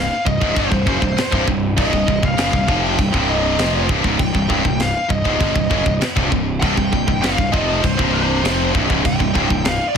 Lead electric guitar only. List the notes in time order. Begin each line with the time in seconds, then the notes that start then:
Already playing: F5
0.26 D#5
0.58 C5
0.89 C5
1.80 D#5
2.26 F5
2.84 G5
3.29 D#5
4.19 G5
4.81 F5
5.10 D#5
6.60 G5
7.22 F5
7.52 D#5
7.82 C5
8.14 C5
9.06 G5
9.65 F5
9.89 D5